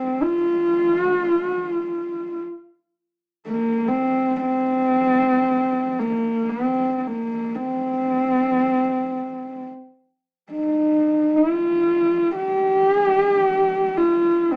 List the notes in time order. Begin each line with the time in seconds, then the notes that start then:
Already playing: C4
0.22 F4
1.00 F#4
1.21 F4
1.43 F#4
1.64 F4
3.47 A#3
3.88 C4
4.40 C4
5.99 A#3
6.49 C4
6.98 C4
7.07 A#3
7.55 C4
10.52 D#4
11.36 F4
12.35 G4
12.91 G#4
13.06 G4
13.22 G#4
13.37 G4
13.97 F4
14.51 C4